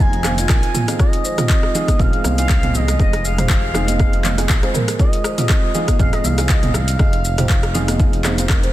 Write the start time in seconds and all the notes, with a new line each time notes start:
Already playing: F1 D#3 F3 C4 F5
0.00 C4 D#4 F4 G#4 G#5, low conga, shaker
0.13 closed hi-hat, muted conga
0.24 C4 D#4 F4 C5 F5, cross-stick, clap, high conga, low conga, shaker
0.38 C4 D#4 F4 C5, closed hi-hat, shaker
0.49 A#1 C4 D#4 F4 A#4 G#5, kick, cross-stick, clap, muted conga, shaker
0.63 F4, closed hi-hat
0.74 F4, mid tom, high conga, low conga, shaker
0.88 C4 D#4 F4 G#4, cross-stick, closed hi-hat, shaker
0.99 G#3 F4 D#5, kick, cross-stick, muted conga, shaker
1.13 closed hi-hat
1.24 C5, shaker
1.38 C4 D#4 F4 G4, cross-stick, closed hi-hat, mid tom, muted conga, shaker
1.50 C4, kick, clap, shaker
1.63 F4, cross-stick
1.74 C4 D#4 F4 G#4, muted conga, low conga, shaker
1.88 G#4, kick, cross-stick, closed hi-hat, high conga, shaker
1.99 F1 C4 D#4 F4 G#4 D#5 F5, kick, mid tom, low conga, shaker
2.13 closed hi-hat, muted conga
2.24 C2, cross-stick, high conga, low conga, shaker
2.38 C4 D#4 F4 G#4 F5, closed hi-hat, shaker
2.49 F5, kick, cross-stick, clap, muted conga, shaker
2.63 C4 D#4 F4 G#4, closed hi-hat, mid tom, high conga
2.74 D#5, high conga, low conga, shaker
2.88 cross-stick, closed hi-hat, shaker
2.99 F1 C4 D#4 F4 G#4 D#5, kick, muted conga, shaker
3.13 cross-stick, closed hi-hat
3.25 F5, shaker
3.38 C4 D#4 F4 G4 C5, cross-stick, closed hi-hat, mid tom, muted conga, shaker
3.50 F1, kick, clap, shaker
3.74 C4 D#4 F4 G#4, cross-stick, muted conga, low conga, shaker
3.88 D#5, closed hi-hat, high conga, shaker
3.99 C4 D#4 F4 G#4, kick, cross-stick, high conga, low conga, shaker
4.13 closed hi-hat, muted conga
4.24 G#4, clap, high conga, low conga, shaker
4.38 C4 D#4 F4 G#4, cross-stick, closed hi-hat, shaker
4.49 A#1, kick, clap, muted conga, shaker
4.63 C4 D#4 F4 G#4 C5, cross-stick, closed hi-hat
4.74 A#4, mid tom, high conga, low conga, shaker
4.88 cross-stick, closed hi-hat, shaker
4.99 C4 D#4 F4 G#4 D#5, kick, muted conga, shaker
5.13 closed hi-hat
5.24 C5, cross-stick, shaker
5.38 C4 D#4 F4 G4, closed hi-hat, mid tom, muted conga, shaker
5.49 C4, kick, cross-stick, clap, shaker
5.63 F4
5.75 C4 D#4 F4 G#4, muted conga, low conga, shaker
5.88 G#4, kick, cross-stick, closed hi-hat, high conga, shaker
5.99 F1 C4 D#4 F4 G#4 D#5 F5, kick, mid tom, low conga, shaker
6.13 D#5, cross-stick, closed hi-hat, muted conga
6.24 C2 F5, high conga, low conga, shaker
6.38 C4 D#4 F4 G#4, cross-stick, closed hi-hat, shaker
6.49 D#5 F5, kick, clap, shaker
6.63 C4 D#4 F4 G#4, closed hi-hat, mid tom, high conga
6.74 F5, cross-stick, high conga, low conga, shaker
6.88 closed hi-hat, shaker
6.99 F1 C4 D#4 F4 G#4 D#5, kick, cross-stick, muted conga, shaker
7.13 closed hi-hat
7.25 shaker
7.38 C4 D#4 F4 G4 C5, cross-stick, closed hi-hat, mid tom, muted conga, shaker
7.49 F1, kick, clap, shaker
7.63 cross-stick, closed hi-hat
7.74 C4 D#4 F4 G#4, muted conga, low conga, shaker
7.88 D#5, cross-stick, closed hi-hat, high conga, shaker
8.00 C4 D#4 F4 G#4, kick, high conga, low conga, shaker
8.13 closed hi-hat, muted conga
8.24 F1 C4 D#4 F4 G#4 C5, cross-stick, clap, high conga, low conga, shaker
8.38 C4 D#4 F4 C5, closed hi-hat, shaker
8.50 C4 D#4, kick, cross-stick, clap, shaker
8.63 C5, closed hi-hat